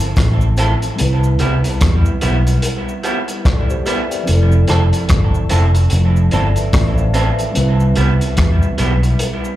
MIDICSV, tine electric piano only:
0, 0, Header, 1, 2, 480
1, 0, Start_track
1, 0, Key_signature, 0, "major"
1, 0, Tempo, 820345
1, 580, Time_signature, 4, 2, 24, 8
1, 5595, End_track
2, 0, Start_track
2, 0, Title_t, "Tine electric piano"
2, 0, Program_c, 0, 4
2, 0, Control_c, 0, 64, 127
2, 0, Note_on_c, 0, 53, 65
2, 0, Note_on_c, 0, 60, 69
2, 0, Note_on_c, 0, 64, 60
2, 0, Note_on_c, 0, 69, 73
2, 546, Note_off_c, 0, 53, 0
2, 553, Note_off_c, 0, 60, 0
2, 559, Note_off_c, 0, 64, 0
2, 559, Note_on_c, 0, 55, 66
2, 564, Note_off_c, 0, 69, 0
2, 571, Note_on_c, 0, 60, 65
2, 583, Note_on_c, 0, 64, 57
2, 588, Control_c, 0, 64, 0
2, 594, Note_on_c, 0, 71, 76
2, 676, Control_c, 0, 64, 127
2, 1763, Note_off_c, 0, 71, 0
2, 2023, Note_on_c, 0, 74, 58
2, 2026, Note_on_c, 0, 69, 47
2, 2158, Note_off_c, 0, 74, 0
2, 2159, Note_off_c, 0, 69, 0
2, 2164, Note_on_c, 0, 72, 73
2, 2167, Note_on_c, 0, 67, 57
2, 2255, Note_off_c, 0, 72, 0
2, 2257, Note_off_c, 0, 67, 0
2, 2259, Note_on_c, 0, 76, 75
2, 2261, Note_on_c, 0, 71, 65
2, 2396, Note_off_c, 0, 76, 0
2, 2397, Note_off_c, 0, 71, 0
2, 2400, Note_on_c, 0, 79, 58
2, 2405, Note_on_c, 0, 74, 54
2, 2466, Note_off_c, 0, 55, 0
2, 2472, Note_off_c, 0, 60, 0
2, 2478, Note_off_c, 0, 64, 0
2, 2478, Note_on_c, 0, 53, 67
2, 2490, Note_on_c, 0, 60, 60
2, 2501, Note_on_c, 0, 64, 61
2, 2508, Control_c, 0, 64, 0
2, 2512, Note_on_c, 0, 69, 76
2, 2599, Control_c, 0, 64, 127
2, 2630, Note_off_c, 0, 79, 0
2, 2632, Note_off_c, 0, 74, 0
2, 3682, Note_off_c, 0, 69, 0
2, 3702, Note_on_c, 0, 74, 70
2, 3705, Note_on_c, 0, 69, 57
2, 3837, Note_off_c, 0, 74, 0
2, 3839, Note_off_c, 0, 69, 0
2, 3844, Note_on_c, 0, 76, 64
2, 3847, Note_on_c, 0, 71, 52
2, 3906, Note_off_c, 0, 53, 0
2, 3911, Note_off_c, 0, 60, 0
2, 3917, Note_off_c, 0, 64, 0
2, 3936, Note_off_c, 0, 76, 0
2, 3937, Note_off_c, 0, 71, 0
2, 3939, Note_on_c, 0, 79, 60
2, 3943, Note_on_c, 0, 74, 53
2, 4076, Note_off_c, 0, 79, 0
2, 4078, Note_off_c, 0, 74, 0
2, 4082, Note_on_c, 0, 77, 73
2, 4085, Note_on_c, 0, 72, 59
2, 4174, Note_off_c, 0, 77, 0
2, 4176, Note_off_c, 0, 72, 0
2, 4180, Note_on_c, 0, 76, 77
2, 4185, Note_on_c, 0, 71, 64
2, 4316, Note_off_c, 0, 76, 0
2, 4319, Note_off_c, 0, 71, 0
2, 4324, Note_on_c, 0, 76, 65
2, 4327, Note_on_c, 0, 71, 49
2, 4399, Note_on_c, 0, 55, 76
2, 4411, Note_on_c, 0, 60, 65
2, 4422, Note_on_c, 0, 64, 55
2, 4428, Note_off_c, 0, 71, 0
2, 4428, Control_c, 0, 64, 0
2, 4435, Note_on_c, 0, 71, 79
2, 4525, Control_c, 0, 64, 127
2, 4552, Note_off_c, 0, 76, 0
2, 5595, Note_off_c, 0, 55, 0
2, 5595, Note_off_c, 0, 60, 0
2, 5595, Note_off_c, 0, 64, 0
2, 5595, Note_off_c, 0, 71, 0
2, 5595, End_track
0, 0, End_of_file